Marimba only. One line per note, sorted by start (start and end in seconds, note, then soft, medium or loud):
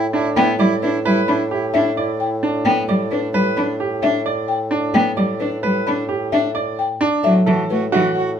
0.00 0.20 G5 medium
0.37 0.66 G5 medium
0.82 1.12 B4 medium
1.28 1.58 B5 medium
1.74 2.04 E5 medium
2.20 2.50 G5 medium
2.65 2.95 G5 medium
3.12 3.41 B4 medium
3.57 3.87 B5 medium
4.03 4.33 E5 medium
4.48 4.78 G5 medium
4.94 5.24 G5 medium
5.40 5.70 B4 medium
5.87 6.16 B5 medium
6.32 6.62 E5 medium
6.79 7.08 G5 medium
7.24 7.53 E5 medium
7.70 7.99 B4 medium
8.16 8.40 F#5 medium